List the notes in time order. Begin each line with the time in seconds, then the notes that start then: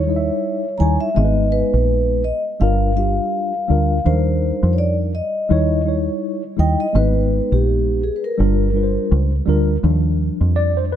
Already playing: D#2 C#5
0.07 G3 D#4 E4 D#5
0.16 E5
0.78 D#2 G3 D#4 E4 G#5 A#5
0.82 C#5
1.01 E5
1.15 G#1 G#3 B3 D#4 G#4 D#5
1.25 B4
1.52 B4
1.74 A#1
2.24 D#5
2.60 G1 G3 D4 F4 A#4 F5
2.96 G3 D4 F4 G4 F5
3.68 D2 G3 D4 F4 A#4
4.04 D#2 F3 D4 D#4 A#4 C5
4.11 G3
4.63 F2
4.73 C#5
4.78 D5
5.15 D#5
5.49 D#2 G3 D#4 E4 C#5
5.85 G3 D#4 E4 C#5
6.57 D#2 G3 D#4 E4 D#5 G5
6.80 D#5
6.93 G#1 G#3 B3 D#4 B4
7.52 A#1 G4
8.04 G#4
8.16 B4
8.24 A#4
8.38 G1 G3 D4 F4 A#4
8.73 G3 D4 F4 B4
8.83 C5
9.12 C#2
9.46 D2 G3 D4 F4 A#4
9.83 D#2 F3 G3 D4
10.41 F2
10.56 D5
10.77 C5
10.92 B4